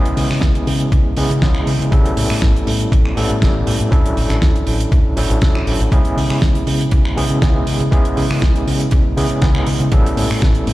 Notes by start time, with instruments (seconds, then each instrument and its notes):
Already playing: tine electric piano G#3 B3 C#4 E4 G#4
0.05 closed hi-hat
0.17 fingered electric bass C#3, open hi-hat
0.30 fingered electric bass C#3, finger snap, snare
0.41 fingered electric bass C#2, kick, snare, closed hi-hat
0.55 closed hi-hat
0.67 fingered electric bass C#3, open hi-hat
0.80 closed hi-hat
0.92 fingered electric bass C#2, kick, closed hi-hat
1.17 fingered electric bass C#3, tine electric piano G#3 B3 C#4 E4 G#4, open hi-hat
1.30 fingered electric bass C#3, closed hi-hat
1.41 fingered electric bass C#2, tine electric piano G#3 B3 C#4 E4 G#4, kick, snare, closed hi-hat
1.55 finger snap
1.67 fingered electric bass C#3, open hi-hat
1.80 fingered electric bass C#3, closed hi-hat
1.91 fingered electric bass A1, tine electric piano G3 B3 C#4 E4 A4, kick, closed hi-hat
2.06 closed hi-hat
2.17 fingered electric bass A2, open hi-hat
2.30 fingered electric bass A2, finger snap
2.42 fingered electric bass A1, kick, snare, closed hi-hat
2.57 closed hi-hat
2.67 fingered electric bass A2, open hi-hat
2.81 closed hi-hat
2.92 fingered electric bass A1, kick, closed hi-hat
3.06 finger snap
3.16 fingered electric bass A2, tine electric piano G3 B3 C#4 E4 A4, open hi-hat
3.29 fingered electric bass A2, closed hi-hat
3.41 fingered electric bass A1, tine electric piano G3 B3 C#4 E4 A4, kick, snare, closed hi-hat
3.67 fingered electric bass A2, open hi-hat
3.80 fingered electric bass A2, closed hi-hat
3.91 fingered electric bass D2, tine electric piano F#3 C#4 D4 E4 A4, kick, closed hi-hat
4.06 closed hi-hat
4.17 fingered electric bass A1, open hi-hat
4.30 fingered electric bass A1, finger snap, snare, closed hi-hat
4.42 fingered electric bass D2, kick, snare, closed hi-hat
4.56 closed hi-hat
4.67 fingered electric bass A1, open hi-hat
4.80 closed hi-hat
4.92 fingered electric bass D2, kick, closed hi-hat
5.16 fingered electric bass A1, tine electric piano F#3 C#4 D4 E4 A4, open hi-hat
5.30 fingered electric bass A1, closed hi-hat
5.42 fingered electric bass D2, tine electric piano C#4 D4 E4, kick, snare, closed hi-hat
5.55 finger snap
5.67 fingered electric bass A1, open hi-hat
5.80 fingered electric bass A1, closed hi-hat
5.91 fingered electric bass C#2, tine electric piano G#3 B3 C#4 E4 G#4, kick, closed hi-hat
6.05 closed hi-hat
6.17 fingered electric bass C#3, open hi-hat
6.30 fingered electric bass C#3, finger snap
6.42 fingered electric bass C#2, kick, snare, closed hi-hat
6.55 closed hi-hat
6.67 fingered electric bass C#3, open hi-hat
6.81 closed hi-hat
6.91 fingered electric bass C#2, kick, closed hi-hat
7.05 finger snap
7.16 fingered electric bass C#3, tine electric piano G#3 B3 C#4 E4 G#4, open hi-hat
7.30 fingered electric bass C#3, closed hi-hat
7.42 fingered electric bass C#2, tine electric piano G#3 B3 C#4 E4 G#4, kick, snare, closed hi-hat
7.67 fingered electric bass C#3, open hi-hat
7.80 fingered electric bass C#3, closed hi-hat
7.91 fingered electric bass C#2, tine electric piano G#3 B3 C#4 E4 G#4, kick, closed hi-hat
8.05 closed hi-hat
8.17 fingered electric bass C#3, open hi-hat
8.31 fingered electric bass C#3, finger snap, snare
8.42 fingered electric bass C#2, kick, snare, closed hi-hat
8.56 closed hi-hat
8.67 fingered electric bass C#3, open hi-hat
8.80 closed hi-hat
8.91 fingered electric bass C#2, kick, closed hi-hat
9.17 fingered electric bass C#3, tine electric piano G#3 B3 C#4 E4 G#4, open hi-hat
9.29 fingered electric bass C#3, closed hi-hat
9.41 fingered electric bass C#2, tine electric piano G#3 B3 C#4 E4 G#4, kick, snare, closed hi-hat
9.55 finger snap
9.66 fingered electric bass C#3, open hi-hat
9.80 fingered electric bass C#3, closed hi-hat
9.91 fingered electric bass A1, tine electric piano G3 B3 C#4 E4 A4, kick, closed hi-hat
10.06 closed hi-hat
10.17 fingered electric bass A2, open hi-hat
10.30 fingered electric bass A2, finger snap
10.42 fingered electric bass A1, kick, snare, closed hi-hat
10.55 closed hi-hat
10.67 fingered electric bass A2, open hi-hat